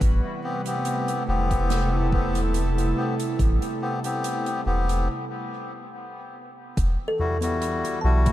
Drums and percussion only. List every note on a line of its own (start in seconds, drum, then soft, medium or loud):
0.01 kick loud
0.01 closed hi-hat medium
0.66 closed hi-hat medium
0.85 closed hi-hat medium
1.08 closed hi-hat soft
1.51 kick medium
1.51 closed hi-hat medium
1.70 snare medium
1.70 closed hi-hat medium
2.12 kick loud
2.35 closed hi-hat medium
2.54 closed hi-hat medium
2.78 closed hi-hat soft
3.20 closed hi-hat medium
3.39 kick loud
3.39 closed hi-hat medium
3.62 closed hi-hat soft
4.04 closed hi-hat soft
4.24 closed hi-hat medium
4.46 closed hi-hat soft
4.89 closed hi-hat soft
6.77 kick loud
6.77 closed hi-hat medium
7.19 mid tom medium
7.42 closed hi-hat medium
7.62 closed hi-hat medium
7.85 closed hi-hat soft
8.26 kick loud
8.26 closed hi-hat medium